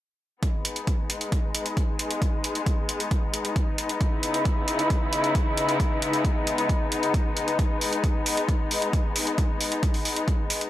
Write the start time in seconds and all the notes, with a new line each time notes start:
0.43 G#3 B3 D#4, kick, closed hi-hat
0.65 closed hi-hat
0.76 closed hi-hat
0.87 kick, closed hi-hat
1.10 closed hi-hat
1.21 closed hi-hat
1.32 kick, closed hi-hat
1.55 closed hi-hat
1.66 closed hi-hat
1.77 kick, closed hi-hat
1.99 closed hi-hat
2.11 closed hi-hat
2.22 kick, closed hi-hat
2.44 closed hi-hat
2.55 closed hi-hat
2.66 kick, closed hi-hat
2.89 closed hi-hat
3.00 closed hi-hat
3.11 kick, closed hi-hat
3.34 closed hi-hat
3.45 closed hi-hat
3.56 kick, closed hi-hat
3.78 closed hi-hat
3.89 closed hi-hat
4.01 C#3 G#3 E4, kick, closed hi-hat
4.23 closed hi-hat
4.34 closed hi-hat
4.45 kick, closed hi-hat
4.68 closed hi-hat
4.79 closed hi-hat
4.90 kick, closed hi-hat
5.13 closed hi-hat
5.24 closed hi-hat
5.35 kick, closed hi-hat
5.57 closed hi-hat
5.69 closed hi-hat
5.80 kick, closed hi-hat
6.02 closed hi-hat
6.13 closed hi-hat
6.25 kick, closed hi-hat
6.47 closed hi-hat
6.58 closed hi-hat
6.69 kick, closed hi-hat
6.92 closed hi-hat
7.03 closed hi-hat
7.14 kick, closed hi-hat
7.37 closed hi-hat
7.48 closed hi-hat
7.59 kick, closed hi-hat
7.81 open hi-hat
7.93 closed hi-hat
8.04 kick, closed hi-hat
8.26 open hi-hat
8.37 closed hi-hat
8.49 kick, closed hi-hat
8.71 open hi-hat
8.82 closed hi-hat
8.93 kick, closed hi-hat
9.16 open hi-hat
9.27 closed hi-hat
9.38 kick, closed hi-hat
9.61 open hi-hat
9.72 closed hi-hat
9.83 kick, closed hi-hat
9.94 open hi-hat
10.05 open hi-hat
10.16 closed hi-hat
10.28 kick, closed hi-hat
10.50 open hi-hat
10.61 closed hi-hat